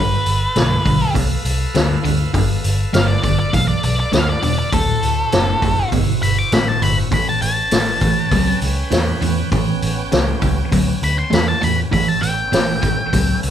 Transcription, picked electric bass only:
0.00 0.16 G1 medium
0.27 0.46 G1 medium
0.56 0.76 B1 medium
0.86 1.05 B1 medium
1.15 1.35 C2 medium
1.45 1.65 C2 medium
1.75 1.95 D2 medium
2.05 2.24 D2 medium
2.34 2.54 G1 medium
2.65 2.84 G1 medium
2.95 3.14 G1 medium
3.24 3.44 G1 medium
3.54 3.73 B1 medium
3.84 4.03 B1 medium
4.13 4.33 D2 medium
4.43 4.63 E1 medium
4.73 4.93 D1 medium
5.03 5.23 D1 medium
5.33 5.53 F#1 medium
5.62 5.82 F#1 medium
5.93 6.12 G1 medium
6.22 6.42 G1 medium
6.52 6.72 A1 medium
6.82 7.02 G1 medium
7.12 7.32 A1 loud
7.42 7.62 A1 medium
7.72 7.92 A1 medium
8.01 8.22 A1 medium
8.31 8.52 C#2 medium
8.62 8.82 C#2 medium
8.91 9.12 E2 medium
9.22 9.42 E2 medium
9.52 9.72 A1 medium
9.83 10.02 A1 medium
10.13 10.33 C#2 medium
10.43 10.62 C#2 medium
10.72 10.92 D2 medium
11.02 11.22 D2 medium
11.33 11.53 E2 medium
11.63 11.83 E2 medium
11.93 12.13 A1 loud
12.22 12.42 A1 medium
12.53 12.73 A1 medium
12.83 13.03 A1 medium
13.13 13.33 C#2 medium
13.44 13.50 C#2 medium

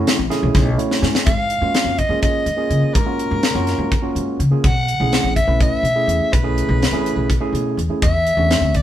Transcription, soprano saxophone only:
1.26 1.99 F5 loud
1.98 2.21 D#5 medium
2.22 2.95 D#5 medium
2.94 4.39 A#4 medium
4.64 5.32 F#5 medium
5.36 5.58 E5 medium
5.62 6.35 E5 medium
6.33 7.78 B4 medium
8.03 8.77 E5 loud
8.76 8.82 D5 medium

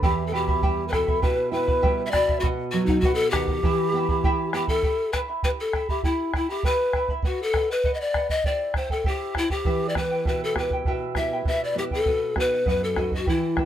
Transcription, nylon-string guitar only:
0.03 1.19 E2 medium
0.32 0.61 B2 medium
0.63 0.92 G3 medium
0.93 1.22 B2 medium
1.23 2.12 B2 medium
1.52 1.81 E4 medium
1.83 2.12 G3 medium
2.13 2.42 B2 medium
2.43 3.60 B2 medium
2.73 3.02 F#3 medium
3.04 3.33 B3 medium
3.33 3.62 D#3 medium
3.63 4.80 E3 medium
3.93 4.22 B3 soft
4.24 4.53 E4 medium
4.54 4.83 B3 medium
9.65 10.24 E3 medium
9.95 10.44 B3 soft
9.95 10.44 E4 soft
9.95 10.44 G4 soft
10.25 10.84 B2 medium
10.55 11.04 B3 soft
10.55 11.04 E4 soft
10.55 11.04 G4 medium
10.86 11.44 B2 medium
11.15 11.64 B3 soft
11.15 11.64 E4 soft
11.15 11.64 G4 medium
11.45 12.04 B2 medium
11.75 12.00 B3 soft
11.75 12.00 E4 soft
11.75 12.00 G4 soft
12.06 12.65 B2 medium
12.36 12.84 B3 soft
12.36 12.84 D#4 soft
12.36 12.85 F#4 soft
12.66 13.25 F#2 medium
12.96 13.20 B3 soft
12.96 13.21 D#4 soft
12.96 13.21 F#4 medium
13.27 13.65 E3 medium
13.55 13.65 B3 soft
13.55 13.65 E4 soft
13.55 13.65 G4 soft

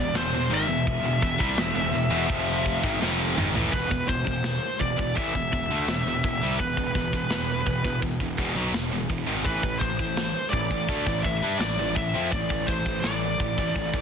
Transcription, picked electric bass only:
0.00 0.14 E1 medium
0.15 0.32 E1 medium
0.33 0.50 E1 medium
0.50 0.66 G#1 loud
0.67 1.01 E1 medium
1.02 1.20 E1 medium
1.23 1.39 E1 medium
1.40 1.56 C2 loud
1.57 1.73 E1 medium
1.73 1.91 E1 medium
1.92 2.10 E1 medium
2.10 2.27 E1 medium
2.29 2.79 F1 loud
2.83 2.99 G#1 medium
3.00 3.34 F1 medium
3.37 3.52 G#1 medium
3.53 3.70 A1 loud
3.73 3.89 E1 medium
3.90 4.07 E1 medium
4.09 4.25 E1 medium
4.27 4.60 E1 medium
4.81 4.97 E1 medium
4.99 5.15 E1 medium
5.17 5.33 A1 loud
5.36 5.51 E1 medium
5.53 5.68 E1 medium
5.69 5.86 D2 medium
5.88 6.05 E1 medium
6.06 6.22 E1 medium
6.25 6.40 E1 medium
6.42 6.58 C2 medium
6.60 6.76 E1 medium
6.78 6.94 E1 medium
6.95 7.11 E1 medium
7.14 7.30 E1 medium
7.31 7.64 E1 medium
7.67 7.83 E1 medium
7.84 8.01 E1 medium
8.02 8.19 E1 medium
8.20 8.36 E1 medium
8.38 8.54 E1 medium
8.55 8.71 B1 medium
8.72 8.90 E1 medium
8.92 9.08 E1 medium
9.09 9.26 E1 medium
9.27 9.44 G#1 loud
9.46 9.62 A1 medium
9.64 9.80 A1 medium
9.82 9.98 A1 medium
9.99 10.33 A1 medium
10.53 10.69 A1 medium
10.70 10.87 A1 medium
10.89 11.05 D2 medium
11.07 11.23 A1 medium
11.25 11.41 A1 medium
11.41 11.59 G2 medium
11.59 11.77 A1 medium
11.78 11.95 A1 medium
11.96 12.13 A1 medium
12.15 12.31 F2 medium
12.32 12.49 A1 medium
12.51 12.67 A1 medium
12.68 12.85 A1 medium
12.86 13.02 A1 medium
13.02 13.36 A1 medium
13.40 13.56 A1 medium
13.58 13.74 A1 medium
13.75 13.92 A1 medium
13.94 14.01 A1 medium

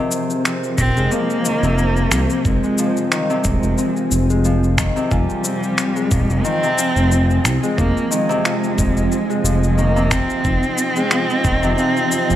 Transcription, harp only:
0.00 1.50 C3 medium
0.00 0.44 C4 medium
0.45 2.11 C4 medium
0.97 1.50 G#3 medium
1.12 1.50 F3 medium
1.45 1.66 D#3 medium
1.64 3.16 C3 medium
2.11 3.78 C4 medium
2.64 3.16 G#3 medium
2.79 3.16 F3 medium
3.12 3.33 D#3 medium
3.30 4.83 C3 medium
3.78 5.44 C4 medium
4.30 4.83 G#3 medium
4.45 4.83 F3 medium
4.78 5.00 D#3 medium
4.96 6.50 C3 medium
5.11 6.78 F4 medium
5.44 7.11 C4 medium
5.96 6.50 G#3 medium
6.11 6.50 F3 medium
6.45 6.66 D#3 medium
6.63 8.16 C3 medium
6.78 8.44 F4 medium
7.11 8.77 C4 medium
7.63 8.16 G#3 medium
7.78 8.16 F3 medium
8.11 8.33 D#3 medium
8.29 9.83 C3 loud
8.44 10.11 F4 medium
8.78 10.45 C4 medium
9.30 9.83 G#3 medium
9.45 9.83 F3 medium
9.78 10.00 D#3 medium
9.96 11.50 C3 loud
10.45 12.11 C4 medium
10.97 11.50 G#3 medium
11.12 11.50 F3 medium
11.45 11.66 D#3 medium
11.63 12.36 C3 loud
11.78 12.36 F4 medium
12.11 12.36 C4 medium

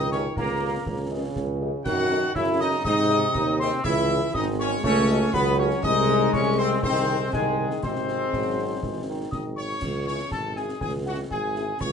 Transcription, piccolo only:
0.00 0.10 D#6 loud
0.11 0.17 C#6 loud
0.38 1.08 A#5 loud
1.85 2.32 F#6 loud
2.35 2.41 E6 loud
2.60 2.66 D#6 loud
2.85 3.56 D#6 loud
3.59 3.86 C6 loud
3.84 4.34 E6 loud
4.34 4.40 D#6 loud
4.59 4.65 C#6 loud
4.84 5.35 C#6 loud
5.34 5.58 B5 loud
5.59 5.65 C#6 loud
5.84 6.30 D#6 loud
6.33 6.60 C#6 loud
6.59 6.82 C6 loud
6.83 7.29 C6 loud
7.33 7.79 G#5 loud
7.83 9.01 C6 loud
9.31 9.37 D#6 medium
9.56 10.03 C#6 medium
10.07 10.13 C#6 medium
10.31 10.54 A5 loud
10.56 10.62 G#5 medium
10.80 10.86 G#5 loud
11.06 11.12 F#5 medium
11.31 11.82 G#5 loud
11.81 11.92 C#6 loud

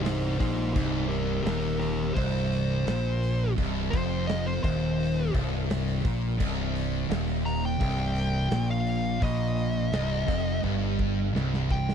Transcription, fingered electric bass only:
0.00 0.36 C1 loud
0.40 0.73 A#1 loud
0.75 1.42 C1 loud
1.45 2.12 D#1 medium
2.17 2.83 C1 loud
2.87 3.53 A#1 loud
3.58 3.90 C1 loud
3.93 4.59 F1 loud
4.64 5.30 D#1 loud
5.34 6.00 C1 loud
6.05 6.37 A#1 loud
6.40 7.06 C1 loud
7.10 7.76 D#1 loud
7.81 8.47 C1 loud
8.51 9.18 A#1 medium
9.22 9.88 A#1 loud
9.92 10.25 C1 loud
10.28 10.61 F1 loud
10.64 11.30 G1 medium
11.35 11.95 C1 loud

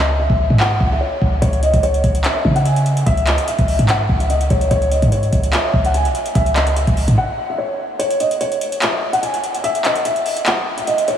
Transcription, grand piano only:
0.00 0.17 D#5 medium
0.19 0.58 E5 medium
0.60 0.90 F#5 medium
0.92 1.01 E5 medium
1.01 1.20 C#5 medium
1.42 1.61 C#5 loud
1.63 1.82 D#5 medium
1.83 2.22 C#5 medium
2.25 2.54 E5 medium
2.55 2.64 F#5 medium
2.65 3.04 G#5 medium
3.06 3.25 E5 loud
3.28 3.46 D#5 medium
3.48 3.86 E5 medium
3.90 4.19 F#5 medium
4.20 4.29 E5 medium
4.30 4.49 D#5 medium
4.50 4.69 C#5 medium
4.71 4.90 C#5 loud
4.91 5.10 D#5 medium
5.12 5.51 C#5 medium
5.53 5.82 E5 medium
5.85 5.94 F#5 medium
5.94 6.33 G#5 medium
6.35 6.54 E5 medium
6.56 6.75 D#5 medium
6.77 7.15 E5 medium
7.18 7.47 F#5 medium
7.50 7.58 E5 medium
7.58 7.77 C#5 medium
7.99 8.18 C#5 loud
8.20 8.39 D#5 medium
8.41 8.79 C#5 medium
8.82 9.12 E5 medium
9.13 9.22 F#5 medium
9.23 9.61 G#5 medium
9.64 9.83 E5 loud
9.85 10.04 D#5 medium
10.05 10.44 E5 medium
10.47 10.76 F#5 medium
10.77 10.86 E5 medium
10.87 11.06 D#5 medium
11.08 11.18 C#5 medium

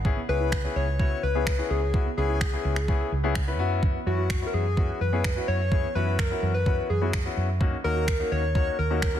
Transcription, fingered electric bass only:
0.00 0.17 G#1 loud
0.29 0.65 C#2 medium
0.76 1.12 C#2 medium
1.23 1.59 C#2 medium
1.70 2.06 C#2 loud
2.17 2.54 C#2 medium
2.65 3.01 C#2 medium
3.12 3.59 C#2 medium
3.59 3.95 F#2 medium
4.06 4.43 F#2 medium
4.54 4.90 F#2 medium
5.01 5.37 F#2 medium
5.48 5.84 F#2 loud
5.95 6.32 F#2 medium
6.43 6.79 F#2 medium
6.90 7.26 F#2 medium
7.37 7.73 F#2 loud
7.84 8.21 D#2 medium
8.32 8.68 D#2 medium
8.79 9.15 D#2 medium

